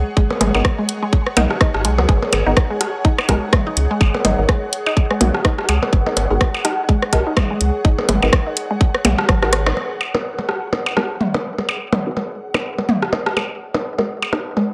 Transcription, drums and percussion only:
0.17 kick loud
0.30 percussion blips medium
0.41 closed hi-hat medium
0.41 mid tom medium
0.41 percussion blips medium
0.55 percussion blips medium
0.65 kick loud
0.65 cross-stick medium
0.89 closed hi-hat loud
1.13 kick loud
1.27 cross-stick medium
1.37 closed hi-hat loud
1.37 mid tom medium
1.37 percussion blips medium
1.50 cross-stick medium
1.61 kick loud
1.61 cross-stick medium
1.74 cross-stick medium
1.85 closed hi-hat medium
1.98 percussion blips medium
2.09 kick loud
2.22 percussion blips medium
2.33 closed hi-hat medium
2.33 percussion blips medium
2.57 kick loud
2.57 cross-stick medium
2.81 cross-stick medium
2.81 closed hi-hat loud
3.05 kick loud
3.18 cross-stick medium
3.18 percussion blips medium
3.29 kick medium
3.29 cross-stick medium
3.29 closed hi-hat medium
3.53 kick loud
3.53 cross-stick medium
3.53 mid tom medium
3.77 closed hi-hat loud
4.01 kick loud
4.01 percussion blips medium
4.15 percussion blips medium
4.25 closed hi-hat medium
4.25 mid tom medium
4.25 percussion blips medium
4.49 kick loud
4.49 cross-stick medium
4.73 closed hi-hat medium
4.86 percussion blips medium
4.97 kick loud
5.11 cross-stick medium
5.21 closed hi-hat medium
5.21 mid tom medium
5.21 percussion blips medium
5.34 cross-stick medium
5.45 kick loud
5.45 cross-stick medium
5.58 cross-stick medium
5.69 closed hi-hat medium
5.69 percussion blips medium
5.83 percussion blips medium
5.93 kick loud
6.06 percussion blips medium
6.17 closed hi-hat medium
6.17 percussion blips medium
6.41 kick loud
6.41 cross-stick medium
6.54 percussion blips medium
6.65 cross-stick medium
6.65 closed hi-hat medium
6.89 kick loud
7.02 cross-stick medium
7.13 kick medium
7.13 cross-stick medium
7.13 closed hi-hat medium
7.37 kick loud
7.37 cross-stick medium
7.37 mid tom medium
7.37 percussion blips medium
7.61 closed hi-hat medium
7.85 kick loud
7.99 percussion blips medium
8.09 closed hi-hat medium
8.09 mid tom medium
8.09 percussion blips medium
8.23 percussion blips medium
8.33 kick loud
8.33 cross-stick loud
8.57 closed hi-hat medium
8.81 kick loud
8.95 cross-stick medium
9.05 closed hi-hat medium
9.05 mid tom medium
9.05 percussion blips medium
9.18 cross-stick medium
9.29 kick loud
9.29 cross-stick medium
9.42 cross-stick medium
9.53 cross-stick medium
9.53 closed hi-hat medium
9.66 cross-stick medium
9.66 percussion blips medium
9.77 percussion blips soft
10.01 percussion blips medium
10.15 percussion blips medium
10.39 percussion blips soft
10.49 cross-stick medium
10.73 percussion blips medium
10.86 percussion blips medium
10.97 cross-stick medium
10.97 percussion blips soft
11.21 mid tom medium
11.34 percussion blips medium
11.58 percussion blips soft
11.69 percussion blips medium
11.93 mid tom medium
11.93 percussion blips medium
12.17 percussion blips soft
12.54 percussion blips medium
12.78 percussion blips soft
12.89 mid tom medium
13.02 cross-stick medium
13.13 percussion blips medium
13.26 cross-stick medium
13.37 percussion blips soft
13.37 percussion blips medium
13.74 percussion blips medium
13.99 percussion blips soft
14.22 percussion blips medium
14.33 cross-stick medium
14.33 percussion blips medium
14.57 percussion blips soft

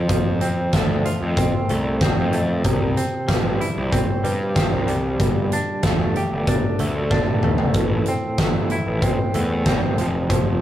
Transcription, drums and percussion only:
0.09 kick medium
0.09 closed hi-hat medium
0.41 closed hi-hat medium
0.73 kick medium
0.73 snare medium
0.73 closed hi-hat medium
1.05 closed hi-hat medium
1.37 kick loud
1.37 closed hi-hat medium
1.69 closed hi-hat soft
2.01 kick loud
2.01 snare medium
2.01 closed hi-hat medium
2.33 closed hi-hat soft
2.64 kick medium
2.64 closed hi-hat medium
2.97 closed hi-hat medium
3.29 kick loud
3.29 snare medium
3.29 closed hi-hat medium
3.61 closed hi-hat medium
3.93 kick medium
3.93 closed hi-hat medium
4.24 closed hi-hat soft
4.56 kick medium
4.56 snare loud
4.56 closed hi-hat medium
4.88 closed hi-hat medium
5.20 kick medium
5.20 closed hi-hat medium
5.52 closed hi-hat medium
5.83 kick medium
5.83 snare medium
5.83 closed hi-hat medium
6.16 closed hi-hat soft
6.47 kick loud
6.47 closed hi-hat medium
6.79 closed hi-hat soft
7.11 kick loud
7.11 snare medium
7.26 high tom medium
7.43 mid tom medium
7.58 floor tom medium
7.74 kick medium
7.74 closed hi-hat medium
8.06 closed hi-hat medium
8.38 kick medium
8.38 snare medium
8.38 closed hi-hat medium
8.70 closed hi-hat soft
9.02 kick loud
9.02 closed hi-hat medium
9.34 closed hi-hat soft
9.66 kick loud
9.66 snare medium
9.66 closed hi-hat medium
9.98 closed hi-hat medium
10.30 kick medium
10.30 closed hi-hat medium

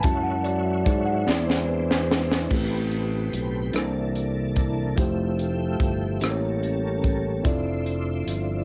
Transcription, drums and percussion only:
0.03 kick medium
0.03 closed hi-hat medium
0.44 closed hi-hat soft
0.86 kick medium
0.86 closed hi-hat medium
1.30 snare medium
1.50 snare medium
1.91 snare medium
2.11 snare medium
2.31 snare medium
2.50 kick medium
2.50 crash medium
2.91 closed hi-hat soft
3.33 closed hi-hat medium
3.73 cross-stick medium
3.73 closed hi-hat medium
4.15 closed hi-hat soft
4.56 kick medium
4.56 closed hi-hat medium
4.98 kick medium
4.98 closed hi-hat medium
5.39 closed hi-hat soft
5.80 kick medium
5.80 closed hi-hat medium
6.21 cross-stick medium
6.21 closed hi-hat medium
6.63 closed hi-hat soft
7.04 kick medium
7.04 closed hi-hat medium
7.45 kick medium
7.45 closed hi-hat medium
7.86 closed hi-hat soft
8.28 closed hi-hat medium

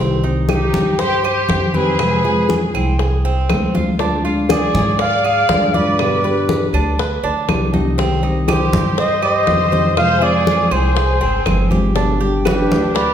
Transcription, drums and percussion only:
0.24 high conga soft
0.49 high bongo medium
0.49 high conga medium
0.49 claves medium
0.74 high conga loud
0.99 high bongo medium
0.99 high conga soft
1.24 high conga soft
1.24 claves medium
1.49 high bongo medium
1.49 low bongo medium
1.49 high conga medium
1.74 high conga medium
1.99 high bongo medium
1.99 high conga soft
1.99 claves medium
2.24 high bongo soft
2.24 high conga soft
2.49 high bongo medium
2.49 high conga medium
2.75 high bongo soft
2.75 high conga soft
2.75 claves medium
2.99 high bongo medium
2.99 high conga soft
3.25 high bongo soft
3.25 high conga soft
3.50 high bongo medium
3.50 low bongo medium
3.50 high conga medium
3.50 claves medium
3.75 high conga medium
3.99 high bongo medium
3.99 high conga soft
4.26 high conga soft
4.49 high bongo medium
4.49 high conga loud
4.49 claves medium
4.75 high conga medium
4.99 high bongo medium
4.99 high conga soft
5.24 high conga soft
5.24 claves medium
5.49 high bongo medium
5.49 low bongo medium
5.49 high conga medium
5.74 high conga medium
5.99 high bongo medium
5.99 high conga soft
5.99 claves medium
6.24 high bongo soft
6.24 high conga soft
6.49 high bongo medium
6.49 high conga medium
6.74 high bongo soft
6.74 high conga soft
6.74 claves medium
6.99 high bongo medium
6.99 high conga soft
7.24 high bongo soft
7.24 high conga soft
7.49 high bongo medium
7.49 low bongo medium
7.49 high conga medium
7.49 claves medium
7.74 high conga medium
7.99 high bongo medium
7.99 high conga soft
8.23 high conga soft
8.48 high bongo medium
8.48 high conga loud
8.48 claves medium
8.73 high conga loud
8.98 high bongo medium
8.98 high conga soft
9.23 high conga soft
9.23 claves medium
9.47 high bongo medium
9.47 low bongo medium
9.47 high conga medium
9.73 high conga medium
9.97 high bongo medium
9.97 high conga soft
9.97 claves medium
10.22 high bongo soft
10.22 high conga soft
10.47 high bongo medium
10.47 high conga medium
10.71 high bongo soft
10.71 claves medium
10.97 high bongo medium
10.97 high conga soft
11.22 high bongo soft
11.22 high conga soft
11.46 high bongo medium
11.46 low bongo medium
11.46 high conga medium
11.46 claves medium
11.72 high conga medium
11.96 high bongo medium
11.96 high conga soft
12.22 high conga soft
12.45 high bongo medium
12.45 high conga medium
12.45 claves medium
12.72 high conga medium
12.96 high bongo medium
12.96 high conga soft

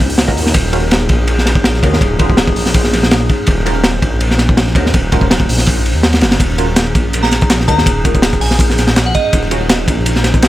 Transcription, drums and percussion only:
0.10 open hi-hat medium
0.18 snare loud
0.18 ride medium
0.28 kick medium
0.37 open hi-hat medium
0.46 snare soft
0.54 kick loud
0.54 ride medium
0.73 ride medium
0.91 snare loud
0.91 ride medium
1.09 kick medium
1.09 ride medium
1.27 ride medium
1.38 snare soft
1.46 snare soft
1.46 ride medium
1.55 kick loud
1.64 snare loud
1.64 ride medium
1.74 snare soft
1.83 kick medium
1.83 ride medium
1.93 snare medium
2.01 kick loud
2.01 ride medium
2.19 kick medium
2.19 ride medium
2.30 kick medium
2.37 snare loud
2.37 ride medium
2.48 kick loud
2.56 open hi-hat medium
2.66 snare soft
2.74 kick loud
2.74 ride medium
2.84 snare soft
2.93 snare soft
2.93 ride medium
3.03 snare medium
3.11 snare loud
3.11 ride medium
3.29 kick medium
3.29 ride medium
3.47 kick loud
3.47 ride medium
3.66 ride medium
3.84 snare loud
3.84 ride loud
4.02 kick loud
4.02 ride medium
4.20 ride medium
4.31 snare soft
4.38 snare soft
4.38 ride medium
4.49 kick loud
4.57 snare loud
4.57 ride medium
4.67 snare soft
4.75 kick loud
4.75 ride medium
4.86 snare medium
4.94 kick loud
4.94 ride medium
5.12 kick medium
5.12 ride medium
5.21 kick loud
5.31 snare loud
5.31 ride medium
5.40 kick loud
5.49 open hi-hat medium
5.58 snare soft
5.66 kick medium
5.66 ride medium
5.86 ride medium
6.03 snare loud
6.03 ride medium
6.13 snare loud
6.13 ride medium
6.21 snare loud
6.21 ride medium
6.32 snare loud
6.32 ride medium
6.40 kick loud
6.40 closed hi-hat medium
6.40 ride medium
6.50 snare soft
6.58 closed hi-hat medium
6.58 ride medium
6.76 snare loud
6.76 closed hi-hat medium
6.76 ride medium
6.95 kick loud
6.95 closed hi-hat medium
6.95 ride medium
7.13 closed hi-hat medium
7.13 ride medium
7.23 snare soft
7.31 snare soft
7.31 closed hi-hat medium
7.31 ride medium
7.41 kick loud
7.41 closed hi-hat soft
7.50 snare loud
7.50 closed hi-hat medium
7.50 ride medium
7.60 snare medium
7.68 kick medium
7.68 closed hi-hat medium
7.68 ride medium
7.78 snare soft
7.78 snare medium
7.86 kick loud
7.86 closed hi-hat medium
7.86 ride medium
8.05 kick medium
8.05 closed hi-hat medium
8.05 ride medium
8.15 kick loud
8.15 closed hi-hat soft
8.22 snare loud
8.22 closed hi-hat medium
8.22 ride medium
8.33 kick loud
8.33 closed hi-hat soft
8.41 snare medium
8.41 closed hi-hat medium
8.41 open hi-hat medium
8.51 snare medium
8.59 kick loud
8.59 closed hi-hat medium
8.59 ride medium
8.69 snare soft
8.78 snare soft
8.78 closed hi-hat medium
8.78 ride medium
8.87 snare medium
8.96 snare loud
8.96 closed hi-hat medium
8.96 ride medium
9.14 kick medium
9.14 closed hi-hat medium
9.14 ride medium
9.33 kick loud
9.33 closed hi-hat medium
9.33 ride medium
9.43 snare soft
9.51 closed hi-hat medium
9.51 ride medium
9.69 snare loud
9.69 closed hi-hat medium
9.69 ride medium
9.88 kick loud
9.88 closed hi-hat medium
9.88 ride medium
10.06 closed hi-hat medium
10.06 ride medium
10.16 snare soft
10.24 snare medium
10.24 closed hi-hat medium
10.24 ride medium
10.34 kick loud
10.34 closed hi-hat soft
10.42 snare loud
10.42 closed hi-hat medium
10.42 ride medium

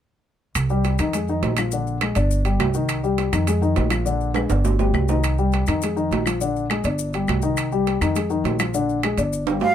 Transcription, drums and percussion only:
0.55 high timbale medium
0.55 claves medium
0.55 maracas medium
0.69 maracas soft
0.84 high timbale medium
0.84 low timbale medium
0.84 maracas soft
0.98 high timbale medium
0.98 claves soft
0.98 maracas medium
1.13 high timbale medium
1.13 maracas medium
1.28 maracas soft
1.43 high timbale medium
1.43 low timbale medium
1.43 maracas soft
1.57 high timbale medium
1.57 claves medium
1.57 maracas medium
1.72 maracas medium
1.87 maracas soft
2.01 high timbale medium
2.01 low timbale medium
2.01 claves medium
2.01 maracas soft
2.15 high timbale medium
2.15 maracas medium
2.31 maracas medium
2.45 high timbale medium
2.45 maracas soft
2.60 high timbale medium
2.60 low timbale medium
2.60 claves medium
2.60 maracas soft
2.74 maracas medium
2.89 high timbale medium
2.89 claves medium
2.89 maracas medium
3.04 maracas soft
3.18 high timbale medium
3.18 low timbale medium
3.18 maracas soft
3.33 high timbale medium
3.33 claves medium
3.33 maracas medium
3.47 high timbale medium
3.47 maracas medium
3.63 maracas soft
3.76 high timbale medium
3.76 low timbale medium
3.76 maracas soft
3.90 high timbale medium
3.90 claves medium
3.90 maracas medium
4.06 maracas medium
4.21 maracas soft
4.34 high timbale medium
4.34 claves medium
4.34 maracas soft
4.50 high timbale medium
4.50 maracas medium
4.65 low timbale medium
4.65 maracas medium
4.79 low timbale medium
4.79 maracas soft
4.94 low timbale medium
4.94 claves medium
4.94 maracas soft
5.08 low timbale medium
5.08 maracas medium
5.24 high timbale medium
5.24 claves medium
5.24 maracas medium
5.38 maracas soft
5.52 high timbale medium
5.52 low timbale medium
5.52 maracas soft
5.66 high timbale medium
5.66 claves soft
5.66 maracas medium
5.82 high timbale medium
5.82 maracas medium
5.97 maracas soft
6.11 high timbale medium
6.11 low timbale medium
6.11 maracas soft
6.26 high timbale medium
6.26 claves medium
6.26 maracas medium
6.41 maracas medium
6.56 maracas soft
6.70 high timbale medium
6.70 low timbale medium
6.70 claves medium
6.70 maracas soft
6.84 high timbale medium
6.84 maracas medium
6.99 maracas medium
7.13 high timbale medium
7.13 maracas soft
7.27 high timbale medium
7.27 low timbale medium
7.27 claves medium
7.27 maracas soft
7.42 maracas medium
7.57 high timbale medium
7.57 claves medium
7.57 maracas medium
7.72 maracas soft
7.87 high timbale medium
7.87 low timbale medium
7.87 maracas soft
8.01 high timbale medium
8.01 claves medium
8.01 maracas medium
8.16 high timbale medium
8.16 maracas medium
8.30 maracas soft
8.45 high timbale medium
8.45 low timbale medium
8.45 maracas soft
8.59 high timbale medium
8.59 claves medium
8.59 maracas medium
8.74 maracas medium
8.89 maracas soft
9.03 high timbale medium
9.03 low timbale medium
9.03 claves medium
9.03 maracas soft
9.18 high timbale medium
9.18 maracas medium
9.33 maracas medium
9.47 high timbale medium
9.47 maracas soft
9.61 low timbale medium

